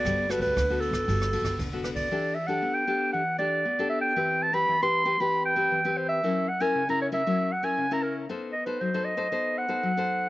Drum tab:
RD |x-xxx-xxx-xxx-xx|----------------|----------------|----------------|
SD |r-r-r--r-r-r--r-|----------------|----------------|----------------|
BD |o--oo--oo--oo--o|----------------|----------------|----------------|

RD |----------------|
SD |----------------|
BD |----------------|